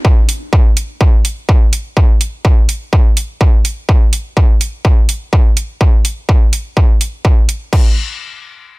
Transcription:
0.05 kick loud
0.29 open hi-hat medium
0.53 kick loud
0.77 open hi-hat loud
1.01 kick loud
1.25 open hi-hat loud
1.49 kick loud
1.73 open hi-hat medium
1.97 kick loud
2.21 open hi-hat medium
2.45 kick loud
2.69 open hi-hat loud
2.93 kick loud
3.17 open hi-hat medium
3.41 kick loud
3.65 open hi-hat medium
3.89 kick loud
4.13 open hi-hat medium
4.37 kick loud
4.61 open hi-hat medium
4.85 kick loud
5.09 open hi-hat medium
5.33 kick medium
5.57 open hi-hat medium
5.81 kick loud
6.05 open hi-hat medium
6.29 kick loud
6.53 open hi-hat medium
6.77 kick loud
7.01 open hi-hat medium
7.25 kick loud
7.49 open hi-hat loud
7.73 kick loud
7.73 crash medium

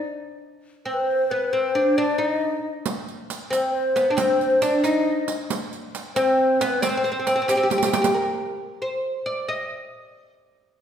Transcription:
0.85 1.31 C4 medium
0.85 0.95 C5 medium
0.94 1.02 B4 medium
1.00 1.32 C5 medium
1.30 1.54 B3 medium
1.30 1.54 B4 medium
1.52 1.75 C4 medium
1.52 1.99 C5 medium
1.75 1.97 D4 medium
1.97 2.18 D4 medium
1.97 2.21 D5 medium
2.18 2.65 D#4 medium
2.18 2.69 D#5 medium
2.86 riq medium
3.08 riq soft
3.30 riq medium
3.50 3.95 C4 medium
3.50 3.72 C5 medium
3.50 riq soft
3.73 4.15 C5 medium
3.96 4.11 B3 medium
3.96 riq soft
4.10 4.18 D4 medium
4.17 4.63 C4 medium
4.17 4.63 C5 medium
4.17 riq medium
4.41 riq soft
4.62 4.83 D4 medium
4.62 4.86 D5 medium
4.62 riq medium
4.84 5.30 D#4 medium
4.84 5.34 D#5 medium
4.84 riq soft
5.28 riq soft
5.50 riq medium
5.73 riq soft
5.95 riq soft
6.15 6.61 C4 loud
6.15 6.36 C5 medium
6.15 riq medium
6.37 6.62 C5 medium
6.60 6.84 B3 loud
6.60 6.83 B4 medium
6.60 riq medium
6.81 6.88 C4 medium
6.81 6.86 D5 medium
6.81 riq medium
6.85 6.96 C4 medium
6.85 7.71 C5 medium
6.97 7.03 C4 medium
7.04 7.10 C4 medium
7.04 riq soft
7.12 7.18 C4 medium
7.19 7.26 C4 medium
7.27 7.34 C4 medium
7.27 riq medium
7.36 7.41 C4 medium
7.42 7.48 C4 medium
7.48 7.56 C4 medium
7.48 7.54 G4 medium
7.48 riq medium
7.56 7.65 C4 medium
7.56 7.62 G4 medium
7.63 7.69 G4 medium
7.70 7.77 G4 medium
7.70 riq medium
7.78 7.85 G4 medium
7.83 7.92 G4 medium
7.83 riq medium
7.93 8.01 G4 medium
7.93 riq medium
8.02 8.10 G4 medium
8.02 riq medium
8.14 8.81 A#4 medium
8.82 9.23 C5 medium
9.26 9.48 D5 medium
9.48 10.33 D#5 medium

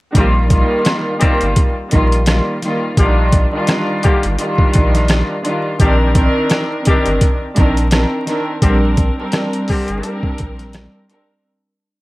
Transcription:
0.14 0.63 A#1 loud
0.14 0.47 D#3 medium
0.14 0.33 D#3 medium
0.14 0.48 G3 medium
0.14 0.33 G3 medium
0.14 0.48 A#3 medium
0.14 0.33 C4 medium
0.14 0.49 F4 loud
0.14 0.33 G4 medium
0.14 kick loud
0.14 closed hi-hat medium
0.50 1.16 D#3 loud
0.50 1.16 G3 medium
0.50 1.17 A#3 medium
0.50 1.17 F4 loud
0.50 kick loud
0.50 closed hi-hat medium
0.85 cross-stick medium
0.85 snare loud
0.85 closed hi-hat medium
1.19 1.71 D#3 medium
1.19 1.42 D#3 medium
1.19 1.42 G3 medium
1.19 1.71 G3 medium
1.19 1.72 A#3 medium
1.19 1.42 C4 medium
1.19 1.72 F4 loud
1.19 1.42 G4 loud
1.19 kick loud
1.19 closed hi-hat medium
1.41 1.55 G1 medium
1.41 closed hi-hat medium
1.56 kick loud
1.56 closed hi-hat medium
1.91 2.41 A#1 medium
1.91 2.24 D#3 loud
1.91 2.25 G3 medium
1.91 2.25 A#3 medium
1.91 2.25 F4 loud
1.91 kick medium
1.91 closed hi-hat medium
2.12 closed hi-hat medium
2.26 2.59 D#3 medium
2.26 2.60 G3 medium
2.26 2.60 A#3 medium
2.26 2.61 F4 medium
2.26 cross-stick medium
2.26 snare loud
2.26 closed hi-hat medium
2.62 2.95 D#3 medium
2.62 2.95 G3 medium
2.62 2.96 A#3 medium
2.62 2.96 F4 medium
2.62 snare soft
2.62 closed hi-hat medium
2.96 3.45 A#1 loud
2.96 3.13 D3 medium
2.96 3.48 D#3 loud
2.96 3.48 G3 medium
2.96 3.13 G3 medium
2.96 3.13 A#3 medium
2.96 3.48 D4 medium
2.96 3.49 F4 loud
2.96 3.13 G4 medium
2.96 kick loud
2.96 closed hi-hat medium
3.32 kick loud
3.32 closed hi-hat medium
3.52 4.32 D#3 medium
3.52 4.33 G3 medium
3.52 4.33 D4 medium
3.52 4.33 F4 loud
3.67 cross-stick medium
3.67 snare loud
3.67 closed hi-hat medium
4.02 4.25 D3 loud
4.02 4.25 G3 medium
4.02 4.25 A#3 loud
4.02 4.25 G4 loud
4.02 kick loud
4.02 closed hi-hat medium
4.23 4.37 G1 medium
4.23 closed hi-hat medium
4.38 5.37 D#3 loud
4.38 5.37 G3 medium
4.38 5.38 D4 medium
4.38 5.38 F4 loud
4.38 closed hi-hat medium
4.58 kick medium
4.73 5.23 A#1 medium
4.73 kick medium
4.73 closed hi-hat medium
4.95 snare soft
4.95 closed hi-hat medium
5.08 cross-stick loud
5.08 snare loud
5.08 closed hi-hat medium
5.43 5.77 D#3 medium
5.43 5.77 G3 medium
5.43 5.78 D4 medium
5.43 5.78 F4 medium
5.43 closed hi-hat medium
5.79 6.28 A#1 loud
5.79 5.95 D#3 medium
5.79 6.12 D#3 medium
5.79 5.95 G3 medium
5.79 6.13 C4 medium
5.79 5.95 D4 medium
5.79 6.13 D4 medium
5.79 5.95 G4 medium
5.79 6.14 A#4 loud
5.79 kick loud
5.79 closed hi-hat medium
6.14 6.80 D#3 loud
6.14 6.81 C4 medium
6.14 6.81 D4 medium
6.14 6.82 A#4 loud
6.14 kick loud
6.14 closed hi-hat medium
6.50 cross-stick medium
6.50 snare loud
6.50 closed hi-hat medium
6.84 7.36 D#3 medium
6.84 7.09 D#3 medium
6.84 7.09 G3 loud
6.84 7.36 C4 medium
6.84 7.37 D4 medium
6.84 7.09 D4 medium
6.84 7.09 G4 loud
6.84 7.37 A#4 loud
6.84 kick medium
6.84 closed hi-hat medium
7.06 7.19 G1 medium
7.06 closed hi-hat medium
7.21 kick medium
7.21 closed hi-hat medium
7.55 8.05 A#1 medium
7.55 7.89 D#3 medium
7.55 7.89 C4 medium
7.55 7.89 D4 medium
7.55 7.90 A#4 loud
7.55 kick medium
7.55 closed hi-hat medium
7.77 closed hi-hat medium
7.90 8.24 D#3 medium
7.90 8.24 C4 medium
7.90 8.25 D4 medium
7.90 8.25 A#4 medium
7.90 cross-stick loud
7.90 snare loud
7.90 closed hi-hat medium
8.26 8.59 D#3 medium
8.26 8.60 C4 medium
8.26 8.60 D4 medium
8.26 8.60 A#4 medium
8.26 snare soft
8.26 closed hi-hat medium
8.62 9.10 A#1 loud
8.62 8.78 D3 medium
8.62 9.13 G3 loud
8.62 8.78 G3 medium
8.62 8.78 C4 medium
8.62 9.13 C4 medium
8.62 9.14 D4 loud
8.62 8.78 G4 medium
8.62 9.14 A#4 loud
8.62 kick loud
8.62 closed hi-hat medium
8.97 kick loud
8.97 closed hi-hat medium
9.17 9.97 G3 medium
9.17 9.97 C4 medium
9.17 9.98 D4 medium
9.17 9.98 A#4 loud
9.32 cross-stick medium
9.32 snare loud
9.32 closed hi-hat medium
9.53 closed hi-hat medium
9.68 10.16 D3 loud
9.68 10.16 G3 loud
9.68 10.16 C4 loud
9.68 10.16 G4 loud
9.68 kick medium
9.68 open hi-hat medium
9.88 10.02 G1 loud
9.88 closed hi-hat medium
10.03 11.02 G3 medium
10.03 11.02 C4 medium
10.03 11.03 D4 medium
10.03 11.03 A#4 loud
10.03 closed hi-hat medium
10.23 kick medium
10.38 10.88 A#1 medium
10.38 kick medium
10.38 closed hi-hat medium
10.59 snare soft
10.59 closed hi-hat medium
10.73 cross-stick loud
10.73 snare loud
10.73 closed hi-hat medium
11.08 11.42 G3 medium
11.08 11.42 C4 medium
11.08 11.42 D4 medium
11.08 11.43 A#4 medium
11.08 closed hi-hat medium

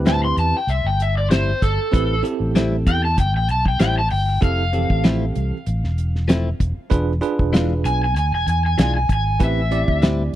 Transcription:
0.00 0.32 D2 medium
0.00 0.58 C4 medium
0.00 0.57 E4 medium
0.00 0.58 G4 medium
0.00 0.58 B4 medium
0.06 0.26 A2 medium
0.06 0.26 G3 medium
0.06 0.26 C4 medium
0.06 0.26 E4 medium
0.06 0.24 A5 medium
0.06 snare loud
0.06 closed hi-hat medium
0.24 0.38 C6 medium
0.37 0.52 E2 medium
0.37 0.55 A5 medium
0.37 closed hi-hat medium
0.57 0.70 G5 medium
0.67 0.83 C2 medium
0.67 0.85 E5 medium
0.67 closed hi-hat medium
0.84 1.52 G1 medium
0.84 1.00 G5 medium
1.00 1.17 E5 medium
1.00 closed hi-hat medium
1.18 1.31 D5 medium
1.30 1.50 A2 medium
1.30 1.51 G3 medium
1.30 1.51 C4 medium
1.30 1.51 E4 medium
1.30 1.61 C5 medium
1.30 snare medium
1.30 closed hi-hat medium
1.62 1.77 G1 medium
1.62 2.23 A4 medium
1.62 kick medium
1.62 closed hi-hat medium
1.78 muted fingered electric bass stroke soft
1.92 2.21 A1 medium
1.92 2.14 C4 medium
1.92 2.14 E4 medium
1.92 2.14 G4 medium
1.92 2.14 B4 medium
1.92 kick loud
1.92 closed hi-hat medium
2.23 3.06 C4 medium
2.23 3.06 E4 medium
2.23 3.06 G4 medium
2.23 3.07 A4 medium
2.23 closed hi-hat medium
2.40 2.87 A1 medium
2.55 2.75 A2 medium
2.55 2.75 G3 medium
2.55 2.75 C4 medium
2.55 2.76 E4 medium
2.55 snare loud
2.55 closed hi-hat medium
2.87 3.19 E2 medium
2.87 3.04 G5 medium
2.87 kick medium
2.87 closed hi-hat medium
3.05 3.18 A5 medium
3.18 3.34 G1 medium
3.18 3.35 G5 medium
3.18 kick medium
3.18 closed hi-hat medium
3.34 3.47 A1 medium
3.34 3.50 G5 medium
3.49 3.77 B1 medium
3.49 3.66 A5 medium
3.49 closed hi-hat medium
3.66 3.81 G5 medium
3.66 kick medium
3.80 4.08 A1 medium
3.80 4.00 A2 medium
3.80 4.00 G3 medium
3.80 4.00 C4 medium
3.80 4.00 E4 medium
3.80 3.97 G5 medium
3.80 snare medium
3.80 closed hi-hat medium
3.99 4.11 A5 medium
4.10 4.39 G1 medium
4.10 4.42 G5 medium
4.10 open hi-hat medium
4.41 4.84 F1 loud
4.41 4.63 C4 medium
4.41 4.63 E4 medium
4.41 4.63 G4 medium
4.41 4.63 A4 medium
4.41 5.03 F5 medium
4.41 kick loud
4.41 closed hi-hat medium
4.73 5.56 E3 medium
4.73 5.56 C4 medium
4.73 5.56 G4 medium
4.73 5.56 A4 medium
4.73 closed hi-hat medium
4.90 5.30 A1 medium
4.90 kick medium
5.04 5.24 F3 medium
5.04 5.24 A3 medium
5.04 5.24 C4 medium
5.04 5.25 E4 loud
5.04 snare loud
5.04 closed hi-hat medium
5.35 5.51 C2 medium
5.35 closed hi-hat medium
5.66 5.82 A1 medium
5.66 closed hi-hat medium
5.84 6.51 E1 medium
5.84 snare soft
5.98 closed hi-hat medium
6.16 snare soft
6.28 6.48 F3 medium
6.28 6.49 A3 medium
6.28 6.49 C4 medium
6.28 6.49 E4 medium
6.28 snare loud
6.28 closed hi-hat medium
6.60 6.75 E1 medium
6.60 kick medium
6.60 closed hi-hat medium
6.78 muted fingered electric bass stroke soft
6.90 7.19 E1 loud
6.90 7.12 D4 medium
6.90 7.12 F4 medium
6.90 7.12 G#4 medium
6.90 7.12 B4 medium
6.90 kick loud
6.90 closed hi-hat medium
7.21 8.04 D4 medium
7.21 8.04 F4 medium
7.21 8.04 G#4 medium
7.21 8.05 B4 medium
7.21 closed hi-hat medium
7.39 7.85 E1 medium
7.39 kick medium
7.53 7.73 E3 medium
7.53 7.73 G#3 medium
7.53 7.73 D4 medium
7.53 7.73 F4 medium
7.53 snare loud
7.53 closed hi-hat medium
7.85 8.16 B1 medium
7.85 8.01 G#5 loud
7.85 snare soft
7.85 closed hi-hat medium
8.04 8.16 G#5 medium
8.16 8.32 D2 medium
8.16 8.33 G#5 medium
8.16 closed hi-hat medium
8.32 8.45 E1 medium
8.32 8.48 G#5 medium
8.47 8.74 E2 medium
8.47 8.64 G#5 medium
8.47 closed hi-hat medium
8.66 8.79 G#5 medium
8.78 9.05 B1 medium
8.78 8.97 E3 medium
8.78 8.98 G#3 medium
8.78 8.98 D4 medium
8.78 8.98 F4 medium
8.78 8.95 G#5 loud
8.78 snare loud
8.78 closed hi-hat medium
8.97 9.10 G#5 medium
9.09 9.37 G#1 medium
9.09 9.41 G#5 medium
9.09 kick medium
9.09 closed hi-hat medium
9.40 9.82 A1 loud
9.40 9.61 C4 medium
9.40 9.61 E4 medium
9.40 9.61 G4 medium
9.40 9.61 B4 medium
9.40 10.02 E5 medium
9.40 kick loud
9.40 closed hi-hat medium
9.71 10.35 C4 medium
9.71 10.35 E4 medium
9.71 10.35 G4 medium
9.71 10.35 D5 medium
9.71 closed hi-hat medium
9.88 10.28 D2 medium
9.88 kick medium
10.02 10.22 A2 medium
10.02 10.22 G3 medium
10.02 10.22 C4 medium
10.02 10.23 E4 medium
10.02 snare loud
10.02 closed hi-hat medium

